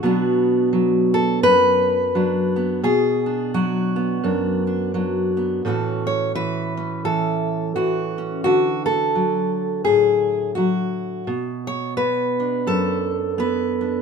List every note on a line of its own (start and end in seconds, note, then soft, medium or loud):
0.03 1.43 B2 medium
0.03 0.72 F#3 soft
0.03 2.55 B3 soft
0.03 2.14 D4 soft
0.03 1.14 F#4 soft
0.73 2.15 F#3 medium
1.14 1.43 A4 medium
1.43 2.84 F#2 medium
1.43 2.84 B4 loud
2.15 2.87 F#3 medium
2.15 2.81 D4 soft
2.56 2.81 B3 soft
2.83 4.24 B2 medium
2.83 3.54 G#4 medium
3.26 4.23 D4 soft
3.54 4.94 F#3 medium
3.54 5.65 F#4 medium
3.96 5.36 B3 soft
4.24 5.64 F#2 medium
4.24 4.66 D4 soft
4.67 4.94 D4 soft
4.94 5.65 F#3 medium
4.94 5.62 D4 soft
5.37 5.62 B3 soft
5.65 8.42 A2 medium
5.65 6.35 E3 soft
5.65 6.76 C#4 soft
5.65 7.76 F#4 soft
5.65 6.06 A4 soft
6.07 6.35 C#5 medium
6.35 7.04 E3 medium
6.35 7.04 B4 loud
6.77 8.17 C#4 soft
7.05 7.74 E3 medium
7.05 7.75 A4 medium
7.76 9.15 E3 medium
7.76 8.43 F#4 medium
8.18 8.43 C#4 soft
8.44 11.23 D3 medium
8.44 8.85 F#4 medium
8.86 9.84 A4 medium
9.15 10.56 F#3 medium
9.85 11.23 A2 medium
9.85 10.55 G#4 medium
10.55 11.24 F#3 medium
10.55 11.26 F#4 medium
11.27 12.67 B2 medium
11.67 11.97 C#5 medium
11.97 13.37 B3 medium
11.97 13.37 B4 medium
12.40 13.80 D4 soft
12.67 14.02 F#2 medium
12.67 14.02 A4 medium
13.38 14.02 B3 medium
13.38 14.02 B4 medium
13.81 14.02 D4 soft